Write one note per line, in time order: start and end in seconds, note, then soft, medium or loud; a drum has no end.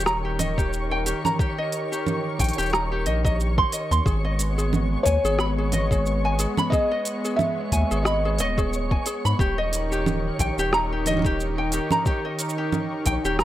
0.00 1.13 D#1 medium
0.00 4.02 D#3 medium
0.00 4.02 G4 medium
0.00 4.02 A#4 medium
0.00 13.44 C#5 medium
0.00 13.44 C#6 medium
0.00 shaker soft
0.06 0.17 A#5 medium
0.06 cross-stick medium
0.06 shaker soft
0.25 0.38 G4 medium
0.39 0.56 D#5 medium
0.39 open hi-hat medium
0.39 low conga medium
0.39 shaker medium
0.58 0.89 G4 medium
0.58 kick loud
0.58 shaker soft
0.73 shaker soft
0.91 1.05 G5 medium
1.06 1.23 G4 medium
1.06 open hi-hat medium
1.06 shaker medium
1.25 1.38 A#5 medium
1.25 low conga medium
1.25 shaker soft
1.39 1.56 G4 medium
1.39 kick loud
1.39 shaker soft
1.58 1.90 D#5 medium
1.72 open hi-hat medium
1.92 2.38 G4 medium
1.92 shaker soft
2.06 low conga medium
2.06 shaker soft
2.39 2.51 A#1 medium
2.39 2.56 G5 medium
2.39 kick medium
2.39 open hi-hat medium
2.39 shaker medium
2.44 open hi-hat medium
2.48 open hi-hat medium
2.53 open hi-hat soft
2.58 3.07 D#1 medium
2.58 2.71 G4 loud
2.58 open hi-hat soft
2.58 shaker soft
2.62 open hi-hat soft
2.66 open hi-hat soft
2.70 2.83 A#5 medium
2.70 cross-stick medium
2.70 open hi-hat soft
2.74 shaker soft
2.92 3.05 G4 medium
3.06 3.64 A#1 medium
3.06 3.23 D#5 medium
3.06 open hi-hat medium
3.25 3.38 D#5 medium
3.25 kick medium
3.25 shaker soft
3.40 shaker soft
3.58 3.71 C6 medium
3.58 kick loud
3.72 3.90 D#5 medium
3.72 open hi-hat medium
3.72 shaker medium
3.91 4.00 D#2 medium
3.91 4.05 C6 loud
3.91 shaker soft
4.06 4.97 G#1 loud
4.06 9.36 G#3 medium
4.06 9.35 B3 medium
4.06 4.23 G#4 medium
4.06 kick loud
4.06 shaker soft
4.25 4.56 D#5 medium
4.39 open hi-hat medium
4.39 shaker medium
4.58 5.04 G#4 medium
4.58 shaker soft
4.73 low conga medium
4.73 shaker soft
5.03 5.17 D#2 medium
5.03 6.34 C#5 loud
5.03 5.23 G#5 medium
5.03 kick medium
5.03 open hi-hat medium
5.03 shaker medium
5.24 6.46 G#1 medium
5.24 5.38 G#4 loud
5.24 shaker soft
5.39 5.50 B5 medium
5.39 cross-stick medium
5.39 shaker soft
5.58 5.71 G#4 medium
5.72 5.90 D#5 loud
5.72 open hi-hat medium
5.72 low conga medium
5.72 shaker medium
5.91 6.23 G#4 medium
5.91 kick loud
5.91 shaker soft
6.06 shaker soft
6.25 6.38 G#5 medium
6.39 6.56 G#4 medium
6.39 open hi-hat medium
6.39 shaker medium
6.57 6.71 B5 medium
6.57 low conga medium
6.57 shaker soft
6.70 6.90 G#4 medium
6.70 7.40 D#5 loud
6.70 kick loud
6.70 shaker soft
6.91 7.23 D#5 medium
7.05 open hi-hat medium
7.05 shaker medium
7.25 7.71 G#4 medium
7.25 shaker soft
7.36 8.07 E5 loud
7.36 low conga medium
7.36 shaker soft
7.72 7.84 D#2 loud
7.72 7.89 G#5 medium
7.72 kick medium
7.72 open hi-hat medium
7.72 shaker medium
7.91 8.41 G#1 medium
7.91 8.04 G#4 loud
7.91 shaker soft
8.03 9.00 D#5 loud
8.03 8.17 B5 medium
8.03 cross-stick medium
8.03 shaker soft
8.25 8.38 G#4 medium
8.38 8.97 D#1 medium
8.38 8.57 D#5 loud
8.38 open hi-hat medium
8.38 shaker medium
8.58 8.90 G#4 medium
8.58 kick medium
8.58 shaker soft
8.73 shaker soft
8.91 9.05 G#5 medium
8.91 kick loud
9.06 9.23 G#4 medium
9.06 open hi-hat medium
9.06 shaker medium
9.25 9.34 G#2 medium
9.25 9.38 B5 medium
9.25 shaker soft
9.39 10.30 D#1 loud
9.39 13.44 D#3 medium
9.39 13.44 D#4 medium
9.39 13.44 G4 medium
9.39 9.56 G4 medium
9.39 13.44 A#4 medium
9.39 kick loud
9.39 shaker soft
9.58 9.90 D#5 medium
9.73 open hi-hat medium
9.73 shaker medium
9.92 10.38 G4 medium
9.92 shaker soft
10.06 low conga medium
10.06 shaker soft
10.39 10.51 A#1 loud
10.39 10.56 G5 medium
10.39 kick medium
10.39 open hi-hat medium
10.39 shaker medium
10.58 11.80 D#1 medium
10.58 10.72 G4 loud
10.58 shaker soft
10.73 10.84 A#5 medium
10.73 cross-stick medium
10.73 shaker soft
10.92 11.05 G4 medium
11.06 11.23 D#5 loud
11.06 open hi-hat medium
11.06 low conga soft
11.06 shaker medium
11.09 low conga soft
11.11 low conga soft
11.14 low conga soft
11.17 low conga medium
11.19 low conga medium
11.22 11.57 G4 medium
11.22 kick loud
11.22 low conga medium
11.22 shaker soft
11.40 shaker soft
11.58 11.71 G5 medium
11.72 11.90 G4 medium
11.72 open hi-hat medium
11.72 shaker medium
11.91 12.05 A#5 medium
11.91 low conga medium
11.91 shaker soft
12.06 12.23 G4 medium
12.06 kick loud
12.06 shaker soft
12.25 12.56 D#5 medium
12.39 open hi-hat medium
12.39 shaker medium
12.49 shaker soft
12.58 13.05 G4 medium
12.72 low conga medium
12.72 shaker soft
13.06 13.17 A#1 loud
13.06 13.23 G5 medium
13.06 kick medium
13.06 open hi-hat medium
13.06 shaker medium
13.25 13.44 D#1 medium
13.25 13.38 G4 loud
13.25 shaker soft
13.39 13.44 A#5 medium
13.39 cross-stick medium
13.39 shaker soft